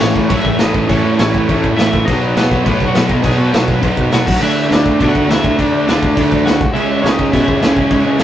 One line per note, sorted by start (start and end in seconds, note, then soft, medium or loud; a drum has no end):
0.00 0.12 A1 loud
0.00 0.72 A2 medium
0.00 0.28 A2 medium
0.00 0.73 E3 medium
0.00 0.29 E3 medium
0.00 0.72 A3 loud
0.00 0.29 A3 medium
0.00 0.28 C#4 medium
0.00 0.28 C#5 medium
0.00 snare loud
0.00 crash medium
0.15 0.27 A1 medium
0.15 kick medium
0.29 0.41 F#2 medium
0.29 0.60 A2 loud
0.29 0.60 E3 loud
0.29 0.59 A3 loud
0.29 0.37 C#4 medium
0.29 0.37 C#5 medium
0.29 kick loud
0.29 crash medium
0.37 0.58 E4 medium
0.37 0.59 E5 loud
0.45 0.56 A1 medium
0.45 kick medium
0.59 0.71 A1 loud
0.59 0.87 A2 medium
0.59 0.89 E3 medium
0.59 0.89 A3 medium
0.59 0.86 D#4 medium
0.59 0.90 D#5 medium
0.59 snare loud
0.59 crash medium
0.73 0.86 A1 loud
0.73 0.86 A2 medium
0.73 0.88 E3 medium
0.73 0.87 A3 medium
0.73 kick medium
0.87 1.01 A1 loud
0.87 1.90 A2 medium
0.87 1.19 A2 loud
0.87 1.91 E3 medium
0.87 1.18 E3 loud
0.87 1.18 A3 loud
0.87 1.91 A3 medium
0.87 1.16 C#4 medium
0.87 1.16 C#5 medium
0.87 kick loud
0.87 crash medium
1.05 1.15 A2 medium
1.19 1.30 A1 loud
1.19 1.47 A2 medium
1.19 1.48 E3 medium
1.19 1.49 A3 loud
1.19 1.74 C#4 medium
1.19 1.79 C#5 medium
1.19 snare loud
1.19 crash medium
1.34 1.45 A1 loud
1.34 kick medium
1.48 1.60 A1 medium
1.48 1.77 A2 loud
1.48 1.76 E3 loud
1.48 1.75 A3 loud
1.48 kick loud
1.48 crash medium
1.64 1.75 A1 loud
1.64 kick medium
1.76 1.89 A1 medium
1.76 2.06 A2 medium
1.76 2.05 E3 medium
1.76 2.05 A3 medium
1.76 2.04 E4 medium
1.76 2.04 E5 loud
1.76 snare loud
1.76 crash medium
1.92 2.04 A1 loud
1.92 2.05 A2 medium
1.92 2.07 E3 medium
1.92 2.06 A3 medium
1.92 kick loud
2.05 2.30 B1 loud
2.05 3.08 B2 loud
2.05 2.36 B2 loud
2.05 3.11 F#3 loud
2.05 2.36 F#3 loud
2.05 2.35 B3 loud
2.05 2.33 D#4 medium
2.05 2.36 D#5 medium
2.05 kick loud
2.05 crash medium
2.09 3.09 B3 loud
2.36 2.48 B1 medium
2.36 2.62 B2 medium
2.36 2.64 F#3 medium
2.36 2.64 B3 loud
2.36 2.64 B3 medium
2.36 2.65 B4 loud
2.36 snare loud
2.36 crash medium
2.51 2.62 B1 loud
2.51 kick medium
2.64 2.77 A2 medium
2.64 2.93 B2 loud
2.64 2.94 F#3 loud
2.64 2.92 B3 loud
2.64 2.86 B3 medium
2.64 2.86 B4 loud
2.64 kick loud
2.64 crash medium
2.80 2.92 B1 medium
2.80 kick medium
2.87 3.08 F#4 medium
2.87 3.10 F#5 loud
2.93 3.07 B1 medium
2.93 3.20 B2 medium
2.93 3.22 F#3 medium
2.93 3.21 B3 medium
2.93 snare loud
2.93 crash medium
3.09 3.21 B1 medium
3.09 3.23 B2 medium
3.09 3.26 F#3 medium
3.09 3.23 B3 medium
3.09 3.24 D#4 medium
3.09 3.25 D#5 medium
3.09 kick medium
3.21 3.35 B1 medium
3.21 3.53 B2 loud
3.21 4.26 B2 medium
3.21 3.54 F#3 loud
3.21 3.52 B3 loud
3.21 kick medium
3.21 crash medium
3.25 4.29 F#3 loud
3.25 4.27 B3 medium
3.25 3.38 G#4 medium
3.25 3.39 G#5 loud
3.38 3.49 B2 medium
3.38 3.66 F#4 medium
3.38 3.68 F#5 medium
3.53 3.65 B1 medium
3.53 3.79 B2 medium
3.53 3.81 F#3 medium
3.53 3.81 B3 loud
3.53 snare loud
3.53 crash medium
3.68 3.79 B1 medium
3.68 kick medium
3.80 3.94 B1 medium
3.80 4.11 B2 loud
3.80 4.11 F#3 loud
3.80 4.09 B3 loud
3.80 kick loud
3.80 crash medium
3.97 4.09 B1 medium
3.97 kick medium
4.10 4.24 B1 medium
4.10 4.26 B2 medium
4.10 4.40 F#3 medium
4.10 4.25 B3 loud
4.10 4.40 F#4 medium
4.10 4.42 F#5 medium
4.10 snare loud
4.10 crash medium
4.27 4.39 D2 medium
4.27 5.27 D3 medium
4.27 5.29 A3 loud
4.27 5.30 D4 medium
4.27 kick loud
4.27 crash loud
4.40 4.64 D2 loud
4.40 4.69 D3 loud
4.40 4.68 A3 loud
4.40 4.67 D4 loud
4.40 4.69 E4 medium
4.40 4.72 E5 loud
4.40 crash medium
4.69 4.82 D2 loud
4.69 4.98 D3 medium
4.69 4.98 A3 medium
4.69 4.99 D4 loud
4.69 4.99 D4 medium
4.69 snare loud
4.69 crash medium
4.73 4.99 D5 medium
4.86 4.97 D2 medium
4.86 kick medium
4.99 5.11 B2 loud
4.99 5.28 D3 loud
4.99 5.27 A3 loud
4.99 5.27 D4 loud
4.99 5.07 D4 medium
4.99 5.08 D5 loud
4.99 kick loud
4.99 crash medium
5.08 5.28 F#4 medium
5.08 5.30 F#5 loud
5.15 5.26 D2 medium
5.15 kick medium
5.28 5.40 D2 loud
5.28 5.40 D3 medium
5.28 5.59 D3 medium
5.28 5.59 A3 medium
5.28 5.42 A3 medium
5.28 5.59 D4 loud
5.28 5.44 D4 medium
5.28 5.57 E4 medium
5.28 5.60 E5 loud
5.28 snare loud
5.28 crash medium
5.41 5.55 D2 medium
5.41 6.43 D3 medium
5.41 6.44 A3 medium
5.41 kick medium
5.45 6.46 D4 loud
5.59 5.70 D2 loud
5.59 5.88 D3 loud
5.59 5.87 A3 loud
5.59 5.86 D4 medium
5.59 5.86 D4 loud
5.59 5.87 D5 medium
5.59 kick loud
5.59 crash medium
5.73 5.84 D3 medium
5.87 5.98 D2 medium
5.87 6.15 D3 medium
5.87 6.15 A3 medium
5.87 6.41 D4 medium
5.87 6.16 D4 loud
5.87 6.48 D5 medium
5.87 snare loud
5.87 crash medium
6.02 6.13 D2 loud
6.02 kick medium
6.16 6.28 D2 loud
6.16 6.44 D3 loud
6.16 6.44 A3 loud
6.16 6.43 D4 loud
6.16 kick loud
6.16 crash medium
6.32 6.43 D2 medium
6.32 kick medium
6.44 6.56 D2 loud
6.44 6.58 D3 medium
6.44 6.59 D3 medium
6.44 6.59 A3 medium
6.44 6.60 A3 medium
6.44 6.59 D4 medium
6.44 6.60 D4 medium
6.44 6.73 F#4 medium
6.44 6.73 F#5 medium
6.44 snare loud
6.44 crash medium
6.59 6.72 C#2 loud
6.59 7.60 C#3 medium
6.59 7.61 G#3 loud
6.59 7.65 C#4 loud
6.59 kick loud
6.74 6.97 C#2 loud
6.74 7.04 C#3 loud
6.74 7.03 G#3 loud
6.74 7.02 C#4 loud
6.74 7.01 E4 medium
6.74 7.04 E5 loud
6.74 crash medium
7.02 7.15 C#2 loud
7.02 7.32 C#3 medium
7.02 7.33 G#3 medium
7.02 7.35 C#4 loud
7.02 7.10 C#4 medium
7.02 7.11 C#5 medium
7.02 snare loud
7.02 crash medium
7.10 7.31 D#4 medium
7.10 7.32 D#5 loud
7.19 7.30 C#2 medium
7.19 kick medium
7.32 7.44 B2 medium
7.32 7.63 C#3 loud
7.32 7.63 G#3 loud
7.32 7.63 C#4 loud
7.32 8.23 E4 medium
7.32 8.23 E5 medium
7.32 kick loud
7.32 crash medium
7.48 7.59 C#2 loud
7.48 kick medium
7.61 7.73 C#2 loud
7.61 7.76 C#3 medium
7.61 7.90 C#3 medium
7.61 7.77 G#3 medium
7.61 7.91 G#3 medium
7.61 7.91 C#4 medium
7.61 7.80 C#4 medium
7.61 snare loud
7.61 crash medium
7.77 7.88 C#2 loud
7.77 8.23 C#3 loud
7.77 8.23 G#3 medium
7.77 8.23 C#4 medium
7.77 kick medium
7.91 8.02 C#2 loud
7.91 8.20 C#3 loud
7.91 8.19 G#3 loud
7.91 8.18 C#4 loud
7.91 kick loud
7.91 crash medium
8.05 8.16 C#3 medium
8.19 8.23 C#2 medium
8.19 8.23 C#3 medium
8.19 8.23 G#3 medium
8.19 8.23 C#4 medium
8.19 snare loud
8.19 crash medium